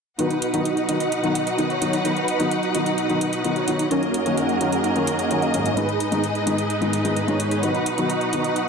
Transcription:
0.18 B2 D#3 F#3 B3 D#4 F#4 B4 F#5, closed hi-hat
0.30 closed hi-hat
0.42 closed hi-hat
0.53 D#3 F#3 B3 D#4 F#4 D#5, closed hi-hat
0.65 closed hi-hat
0.77 closed hi-hat
0.88 D#3 F#3 B3 D#4 F#4 D#5, closed hi-hat
1.00 closed hi-hat
1.12 closed hi-hat
1.23 D#3 F#3 B3 D#4 F#4 D#5, closed hi-hat
1.35 closed hi-hat
1.47 closed hi-hat
1.58 D#3 F#3 B3 D#4, closed hi-hat
1.70 D#4 F#4 C#5, closed hi-hat
1.81 D#3 F#3 B3 D#4, closed hi-hat
1.93 closed hi-hat
2.04 D#3 F#3 B3 D#4 F#4 B4, closed hi-hat
2.17 closed hi-hat
2.28 closed hi-hat
2.39 D#3 F#3 B3 D#4 F#4 D#5, closed hi-hat
2.51 closed hi-hat
2.63 closed hi-hat
2.74 D#3 F#3 B3 D#4 F#4 D#5, closed hi-hat
2.86 closed hi-hat
2.98 closed hi-hat
3.09 D#3 F#3 B3 D#4 F#4 D#5, closed hi-hat
3.21 closed hi-hat
3.33 closed hi-hat
3.44 D#3 F#3 B3 D#4, closed hi-hat
3.56 D#4 F#4 C#5, closed hi-hat
3.67 D#3 F#3 B3 D#4, closed hi-hat
3.79 closed hi-hat
3.90 F#2 D#3 F#3 A#3 C#4 D#4 F#4 G#4 A#4 C#5 D#5, closed hi-hat
4.03 closed hi-hat
4.14 closed hi-hat
4.25 D#3 F#3 A#3 C#4 D#4 F#4 F#5, closed hi-hat
4.37 closed hi-hat
4.49 closed hi-hat
4.60 D#3 F#3 A#3 C#4 D#4 F#4 F#5, closed hi-hat
4.72 closed hi-hat
4.84 closed hi-hat
4.95 D#3 F#3 A#3 C#4 D#4 F#4 F#5, closed hi-hat
5.07 closed hi-hat
5.19 closed hi-hat
5.30 D#3 F#3 A#3 C#4, closed hi-hat
5.42 A#3 C#4 D#4 F#4 D#5, closed hi-hat
5.53 G#2 D#3 F#3 A#3 C#4, closed hi-hat
5.66 closed hi-hat
5.76 G#2 D#3 G#3 B3 D#4 G#4 B4, closed hi-hat
5.89 closed hi-hat
6.00 closed hi-hat
6.11 G#2 D#3 G#3 B3 D#4 G#4 D#5, closed hi-hat
6.24 closed hi-hat
6.35 closed hi-hat
6.46 G#2 D#3 G#3 B3 D#4 G#4 D#5, closed hi-hat
6.58 closed hi-hat
6.70 closed hi-hat
6.81 G#2 D#3 G#3 B3 D#4 G#4 D#5, closed hi-hat
6.93 closed hi-hat
7.04 G#2 D#3 G#3 B3 D#4, closed hi-hat
7.16 closed hi-hat
7.27 G#2 D#3 G#3 B3 D#4 G#4 C#5, closed hi-hat
7.40 closed hi-hat
7.51 closed hi-hat
7.62 B2 D#3 F#3 B3 D#4 F#4 B4 F#5, closed hi-hat
7.75 closed hi-hat
7.86 closed hi-hat
7.97 D#3 F#3 B3 D#4 F#4 D#5, closed hi-hat
8.10 closed hi-hat
8.21 closed hi-hat
8.32 D#3 F#3 B3 D#4 F#4 D#5, closed hi-hat
8.44 closed hi-hat
8.56 closed hi-hat

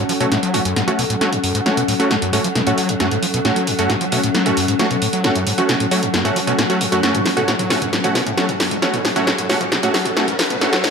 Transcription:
Already playing: F#3 C#4 A4 F#5
0.09 F3, open hi-hat
0.20 B2 A3 C#4 F#4, closed hi-hat
0.32 A2, snare, closed hi-hat
0.43 F#3, closed hi-hat
0.54 F#2 A3 C#4 F#4, open hi-hat
0.65 F#2, closed hi-hat
0.76 G#2, snare, closed hi-hat
0.88 F3 A3 C#4 F#4, closed hi-hat
0.99 B2, open hi-hat
1.10 A2, closed hi-hat
1.21 F#3 A3 C#4 F#4, snare, closed hi-hat
1.33 F#2, closed hi-hat
1.44 F#2, open hi-hat
1.55 G#2, closed hi-hat
1.66 F3 A3 C#4 F#4, snare, closed hi-hat
1.77 B2, closed hi-hat
1.88 A2, open hi-hat
2.00 F#3 A3 C#4 F#4, closed hi-hat
2.11 F#2, snare, closed hi-hat
2.22 F#2, closed hi-hat
2.33 G#2 A3 C#4 F#4, open hi-hat
2.44 F3, closed hi-hat
2.55 B2, snare, closed hi-hat
2.67 A2 A3 C#4 F#4, closed hi-hat
2.78 F#3, open hi-hat
2.89 F#2, closed hi-hat
3.00 F#2 A3 C#4 F#4, snare, closed hi-hat
3.11 G#2, closed hi-hat
3.23 F3, open hi-hat
3.34 B2, closed hi-hat
3.45 A2 A3 C#4 F#4, snare, closed hi-hat
3.56 F#3, closed hi-hat
3.67 F#2, open hi-hat
3.79 F#2 A3 C#4 F#4, closed hi-hat
3.90 G#2, snare, closed hi-hat
4.01 F3, closed hi-hat
4.12 B2 A3 C#4 F#4, open hi-hat
4.23 A2, closed hi-hat
4.35 F#3, snare, closed hi-hat
4.46 F#2 A3 C#4 F#4, closed hi-hat
4.57 F#2, open hi-hat
4.68 G#2, closed hi-hat
4.79 F3 A3 C#4 F#4, snare, closed hi-hat
4.91 B2, closed hi-hat
5.02 A2, open hi-hat
5.13 F#3, closed hi-hat
5.24 F#2 A3 C#4 F#4, snare, closed hi-hat
5.35 F#2, closed hi-hat
5.47 G#2, open hi-hat
5.58 F3 A3 C#4 F#4, closed hi-hat
5.69 B2, snare, closed hi-hat
5.80 A2, closed hi-hat
5.91 F#3 A3 C#4 F#4, open hi-hat
6.03 F#2, closed hi-hat
6.14 F#2, snare, closed hi-hat
6.25 G#2 A3 C#4 F#4, closed hi-hat
6.36 F3, open hi-hat
6.47 B2 A3 C#4 F#4, closed hi-hat
6.58 A2, snare, closed hi-hat
6.70 F#3 A3 C#4 F#4, closed hi-hat
6.81 F#2, open hi-hat
6.92 F#2 A3 C#4 F#4, closed hi-hat
7.03 F#2 A3 C#4 F#4, snare, closed hi-hat, riser
7.14 G#2, closed hi-hat, mid tom
7.26 F3, snare, open hi-hat
7.37 B2 A3 C#4 F#4, closed hi-hat, mid tom
7.48 A2, snare, closed hi-hat
7.59 F#3, closed hi-hat, mid tom
7.70 F#2 A3 C#4 F#4, snare, open hi-hat
7.82 F#2, closed hi-hat, mid tom
7.93 G#2, snare, closed hi-hat
8.04 F3 A3 C#4 F#4, closed hi-hat, mid tom
8.15 B2, snare, open hi-hat
8.26 A2, closed hi-hat, mid tom
8.37 F#3 A3 C#4 F#4, snare, closed hi-hat
8.49 F#2, closed hi-hat, mid tom
8.60 F#2, snare, open hi-hat
8.71 G#2, closed hi-hat, mid tom
8.82 F3 A3 C#4 F#4, snare, closed hi-hat
8.94 B2, closed hi-hat, mid tom
9.05 A2, snare, open hi-hat
9.16 F#3 A3 C#4 F#4, closed hi-hat, mid tom
9.27 F#2, snare, closed hi-hat
9.38 F#2, closed hi-hat, mid tom
9.49 G#2 A3 C#4 F#4, snare, open hi-hat
9.61 F3, closed hi-hat, mid tom
9.72 B2, snare, closed hi-hat
9.83 A2 A3 C#4 F#4, closed hi-hat, mid tom
9.94 F#3, snare, open hi-hat
10.06 F#2, closed hi-hat, mid tom
10.17 F#2 A3 C#4 F#4, snare, closed hi-hat
10.28 G#2, closed hi-hat, mid tom
10.39 F3, snare, open hi-hat
10.50 B2, closed hi-hat, mid tom
10.61 A2 A3 C#4 F#4, snare, closed hi-hat
10.73 F#3, snare, closed hi-hat, mid tom
10.84 F#2, snare, open hi-hat

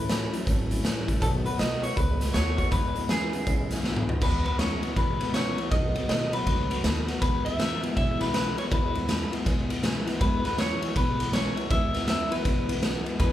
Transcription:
Already playing: A1 B4
0.09 A2 E3 F#3 A3 C#4 E4, snare, closed hi-hat
0.32 A2 F#3 A3 C#4 E4, closed hi-hat
0.46 G#1 A2 E3 F#3 A3 C#4 E4, kick, closed hi-hat
0.69 A2 F#3 A3 C#4 E4, closed hi-hat
0.83 A1 A2 E3 G3 A3 C#4 E4, snare, closed hi-hat
1.07 A2 G3 A3 C#4 E4, kick, closed hi-hat
1.21 B1 B2 D#3 F#3 A3 B3 F#4 A4, kick, closed hi-hat
1.44 B2 F#3 A3 B3 F#4 B4, closed hi-hat
1.58 B1 B2 D#3 G#3 A3 B3 F#4 D#5, snare, closed hi-hat
1.82 B2 G#3 A3 B3 F#4 C#5, closed hi-hat
1.96 C#2 B2 D#3 G#3 A3 B3 F#4 B4, kick, closed hi-hat
2.20 B2 G#3 A3 B3 F#4, snare, closed hi-hat
2.33 D#2 B2 D#3 A3 B3 F#4 C#5, snare, closed hi-hat
2.57 B2 A3 B3 F#4 C#5, kick, closed hi-hat
2.71 E2 B2 E3 G#3 B3 E4 B4, kick, snare, closed hi-hat
2.95 E2 B2 E3 G#3 B3 E4, closed hi-hat
3.08 E2 B2 C#3 E3 G#3 B3 E4 G#4, snare, closed hi-hat
3.33 E2 C#3 E3 G#3 B3 E4, closed hi-hat
3.46 B1 E2 C#3 E3 G#3 B3 E4, kick, closed hi-hat
3.70 E2 C#3 E3 G#3 B3 E4, snare, closed hi-hat
3.84 E2 B2 D3 E3 G#3 B3 E4, snare
3.96 mid tom
4.07 E2 D3 E3 G#3 B3 E4, floor tom
4.21 E2 B2 E3 G#3 B3 E4 B4, kick, crash
4.45 E2 B2 E3 G#3 B3 E4 B4, ride
4.58 E2 B2 C#3 E3 G#3 B3 E4 C#5, snare, ride
4.83 E2 B2 E3 G#3 B3 E4, ride
4.96 B1 E2 B2 E3 G#3 B3 E4 B4, kick, ride
5.20 E2 B2 E3 G#3 B3 E4, ride
5.34 E2 B2 C#3 E3 G#3 B3 E4 C#5, snare, ride
5.58 E2 B2 E3 G#3 B3 E4, ride
5.71 B1 B2 D#3 F#3 A3 B3 F#4 D#5, kick, ride
5.95 B2 F#3 A3 B3 F#4, ride
6.09 B1 B2 D#3 G#3 A3 B3 F#4 D#5, snare, ride
6.32 B2 F#3 A3 B3 F#4 B4, ride
6.46 C#2 B2 D#3 F#3 A3 B3 F#4, kick, ride
6.70 B2 F#3 A3 B3 F#4, ride
6.84 D#2 B2 D#3 G#3 A3 B3 F#4, snare, ride
7.08 B2 F#3 A3 B3 F#4, snare, ride
7.21 E2 B2 E3 G#3 B3 E4 B4, kick, ride
7.45 E2 B2 E3 G#3 B3 E4 E5, ride
7.59 E2 B2 C#3 E3 G#3 B3 E4, snare, ride
7.82 E2 B2 E3 G#3 B3 E4, ride
7.95 B1 E2 B2 E3 G#3 B3 E4 E5, kick, ride
8.19 E2 B2 E3 G#3 B3 E4 B4, snare, ride
8.33 E2 B2 C#3 E3 G#3 B3 E4 B4, snare, ride
8.57 E2 B2 E3 G#3 B3 E4 C#5, ride
8.70 E2 B2 E3 G#3 B3 E4 B4, kick, ride
8.94 E2 B2 E3 G#3 B3 E4, ride
9.07 E2 B2 C#3 E3 G#3 B3 E4, snare, ride
9.31 E2 B2 E3 G#3 B3 E4, ride
9.44 B1 E2 B2 E3 G#3 B3 E4, kick, snare, ride
9.69 E2 B2 E3 G#3 B3 E4, ride
9.82 E2 B2 C#3 E3 G#3 B3 E4, snare, ride
10.06 E2 B2 E3 G#3 B3 E4, snare, ride
10.20 E2 B2 E3 G#3 B3 E4 B4, kick, ride
10.44 E2 B2 E3 G#3 B3 E4 B4, snare, ride
10.58 E2 B2 C#3 E3 G#3 B3 E4 C#5, snare, ride
10.81 E2 B2 E3 G#3 B3 E4, ride
10.95 B1 E2 B2 E3 G#3 B3 E4 B4, kick, ride
11.19 E2 B2 E3 G#3 B3 E4, ride
11.32 E2 B2 C#3 E3 G#3 B3 E4 C#5, snare, ride
11.56 E2 B2 E3 G#3 B3 E4, ride
11.70 E2 B2 E3 G#3 B3 E4 E5, kick, ride
11.93 E2 B2 E3 G#3 B3 E4, snare, ride
12.07 E2 B2 C#3 E3 G#3 B3 E4 E5, snare, ride
12.31 E2 B2 E3 G#3 B3 E4 B4, ride
12.44 B1 E2 B2 E3 G#3 B3 E4, kick, snare, ride
12.69 E2 B2 E3 G#3 B3 E4, ride
12.82 E2 B2 C#3 E3 G#3 B3 E4, snare, ride
13.06 E2 B2 E3 G#3 B3 E4, ride
13.20 E2 B2 E3 G#3 B3 E4 B4, kick, ride

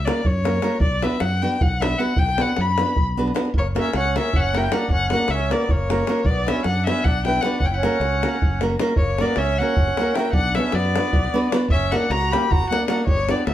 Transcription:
0.05 A#3 C#4 F#4 A#4 D5, davul high
0.25 F#2 C#5, davul low
0.44 A#3 C#4 F#4 A#4, davul high
0.62 A#3 C#4 F#4 A#4, davul high
0.80 B1 D5, davul low
1.02 B3 D4 F#4 B4 E5, davul high
1.20 F#2 F#5, davul high
1.42 B3 D4 F#4 B4 G5
1.61 B1 F#5, davul low
1.80 B3 D4 F#4 B4 E5, davul high
1.99 B3 D4 F#4 B4 F#5
2.16 B1 G5, davul low
2.28 davul high
2.38 B3 D4 F#4 B4 F#5, davul high
2.48 davul high
2.57 F#2, davul high
2.61 B5
2.78 B3 D4 F#4 B4, davul high
2.88 davul high
2.96 B1, davul low
3.17 B3 D4 F#4 B4
3.28 davul high
3.34 B3 D4 F#4 B4, davul high
3.45 davul high
3.54 F#1 A#3, davul low
3.58 C#5
3.75 A#3 C#4 F#4 A#4, davul high
3.80 C#4 E5
3.93 C#2 C#4 F#5, davul high
4.16 A#3 C#4 F#4 A#4 E5, davul high
4.33 F#1 C#4 F#5, davul low
4.53 A#3 C#4 E4 F#4 A#4, davul high
4.57 G5
4.72 A#3 C#4 D4 F#4 A#4 F#5, davul high
4.88 F#1 C#4 F#5, davul low
5.10 A#3 C#4 F#4 A#4 F#5, davul high
5.15 D4
5.28 C#2 E5, davul high
5.33 C#4
5.50 A#3 B3 C#4 F#4 A#4 D5, davul high
5.68 F#1 A#3 C#5, davul low
5.90 A#3 C#4 F#4 A#4, davul high
6.07 A#3 C#4 F#4 A#4, davul high
6.24 B1 B3 D5, davul low
6.46 B3 C#4 D4 F#4 B4 E5, davul high
6.64 F#2 D4 F#5, davul high
6.86 B3 C#4 D4 F#4 B4 E5, davul high
7.04 B1 D4 F#5, davul low
7.25 B3 D4 E4 F#4 B4 G5, davul high
7.41 B3 D4 F#4 F#5, davul high
7.46 B4
7.60 F#1 C#4 F#5, davul low
7.66 G5
7.70 E4 F#5
7.77 C#4
7.83 A#3 C#4 F#4 A#4, davul high
7.93 davul high
8.00 C#2, davul high
8.12 davul high
8.22 A#3 C#4 F#4 A#4, davul high
8.33 davul high
8.42 F#1, davul low
8.61 A#3 C#4 F#4 A#4, davul high
8.70 davul high
8.79 A#3 C#4 F#4 A#4, davul high
8.96 F#1 A#3 C#5, davul low
9.18 A#3 B3 C#4 F#4 A#4 D5, davul high
9.36 C#2 C#4 E5, davul high
9.58 A#3 C#4 F#4 A#4 F#5
9.76 F#1, davul low
9.87 davul high
9.97 A#3 C#4 F#4, davul high
10.01 A#4
10.13 A#3 E4 G5, davul high
10.18 C#4 F#4 A#4
10.25 davul high
10.33 B1 D4 F#5, davul low
10.55 B3 C#4 D4 F#4 B4 E5, davul high
10.72 F#2 B3 D5, davul high
10.85 davul high
10.96 B3 D4 F#4 B4, davul high
11.13 B1, davul low
11.24 davul high
11.34 B3 D4 F#4 B4
11.52 B3 D4 F#4 B4, davul high
11.61 davul high
11.68 F#1 C#4 E5, davul low
11.92 A#3 C#4 D4 F#4 A#4 F#5, davul high
12.10 C#2 F#4 A#5, davul high
12.22 davul high
12.31 A#3 C#4 F#4 G4 A#4 B5, davul high
12.50 F#1 F#4 A#5, davul low
12.63 davul high
12.70 A#3 C#4 D4 F#4 A#4 F#5, davul high
12.87 A#3 C#4 D4 F#4 A#4 F#5, davul high
12.98 davul high
13.06 G1 G3 C#5, davul low
13.17 davul high
13.29 B3 D4 G4 B4 D5, davul high
13.38 davul high
13.47 D2 B3 E5, davul high

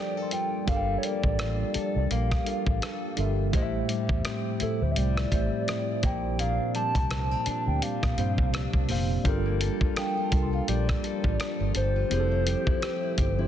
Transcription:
Already playing: F3 G3 A#3 D4 F4 G4 A4 A#4 C5 D5 G5
0.17 A4
0.22 C6
0.31 F4 G5, closed hi-hat
0.66 G1 G3 D4 A4 A#4 F5, kick, closed hi-hat
0.70 F5
0.76 G5
0.98 C#5
1.03 A#3 D5, closed hi-hat
1.24 A1, kick
1.39 F4, cross-stick, closed hi-hat
1.74 A4, muted fingered electric bass stroke, closed hi-hat
1.96 C2 D5
2.11 A#1 A#3 F5, closed hi-hat
2.32 kick, cross-stick
2.44 G3 D4 F4 A4 A#4, closed hi-hat
2.49 F5
2.67 A1, kick
2.82 A4, cross-stick, closed hi-hat
3.16 G1 G3 D4 F4 A4 A#4, closed hi-hat
3.20 E5
3.52 A1 A2 F3 A3 C4 E4 G4 C5, kick, closed hi-hat
3.56 D#5
3.62 E5
3.89 G3, closed hi-hat
4.09 E2, kick
4.25 C4, cross-stick, closed hi-hat
4.59 A2 A3 E4 G4 A4 C5, muted fingered electric bass stroke, closed hi-hat
4.63 E5
4.82 D2 C5
4.91 E5
4.96 C2 G3 D5, closed hi-hat
5.17 cross-stick
5.30 A1 A2 A3 C4 G4 C5, kick, closed hi-hat
5.35 E5
5.68 E4, cross-stick, closed hi-hat
6.02 A#1 A#2 A#3 D4 G4 C5 G5, kick, closed hi-hat
6.06 D5
6.39 A#2 D4 F5, closed hi-hat
6.75 G3 A5, closed hi-hat
6.95 C2, kick, closed hi-hat
7.11 A#3, cross-stick, closed hi-hat
7.31 C4
7.46 D4 A5, muted fingered electric bass stroke, closed hi-hat
7.67 D2 G5
7.82 G3 F5, closed hi-hat
8.03 A#2, kick, cross-stick
8.16 G2 A#2 A#3 C4 G4 C5, closed hi-hat
8.21 F5
8.38 C2, kick
8.53 D4, cross-stick, closed hi-hat
8.73 C2, kick
8.88 F1 A#2 A#3 C4 G4 C5, open hi-hat
8.92 F5
9.23 G1 F3 G3 A#3 D4 F4 G4 A4, kick, closed hi-hat
9.28 A#4
9.46 A#3
9.61 A4, closed hi-hat
9.80 G3 D4 F4 A4, muted fingered electric bass stroke, kick
9.84 A#4
9.96 A4 F5 G5, cross-stick, closed hi-hat
10.17 F4
10.23 A5
10.30 C2 G3 D4 F4 A4, kick, closed hi-hat
10.35 A#4
10.42 C6
10.53 F4 F5
10.68 A#1 G3 D5, closed hi-hat
10.89 A#3, kick, cross-stick
11.04 A4, closed hi-hat
11.24 A1 F4, kick
11.40 A4, cross-stick, closed hi-hat
11.60 G1 F4
11.75 G1 A4 C5, closed hi-hat
11.96 F4
12.09 F1 C3 F3 A3 C4 E4 G4, closed hi-hat
12.13 G#4
12.20 A4
12.32 A3
12.47 G4, closed hi-hat
12.67 E4, muted fingered electric bass stroke, kick
12.82 G4, cross-stick, closed hi-hat
13.03 E4
13.18 G1 G4, kick, closed hi-hat
13.37 F3 C4 E4 G4
13.41 C5

